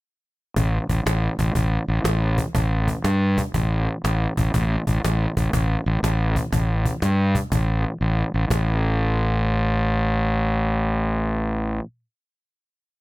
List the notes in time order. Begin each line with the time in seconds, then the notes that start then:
0.56 A1, cajon bass
0.89 A1, cajon bass
1.06 A1, cajon slap
1.39 A1, cajon bass
1.55 A1, cajon bass
1.88 A1
2.04 A1, cajon slap
2.38 cajon bass
2.55 A1, cajon bass
2.88 cajon bass
3.04 G2, cajon slap
3.38 cajon bass
3.54 A1, cajon bass
4.04 A1, cajon slap
4.37 A1, cajon bass
4.54 A1, cajon bass
4.87 A1, cajon bass
5.04 A1, cajon slap
5.37 A1, cajon bass
5.53 A1, cajon bass
5.86 A1
6.03 A1, cajon slap
6.36 cajon bass
6.53 A1, cajon bass
6.86 cajon bass
7.02 G2, cajon slap
7.35 cajon bass
7.52 A1, cajon bass
8.01 A1
8.34 A1
8.50 A1, cajon bass, cajon slap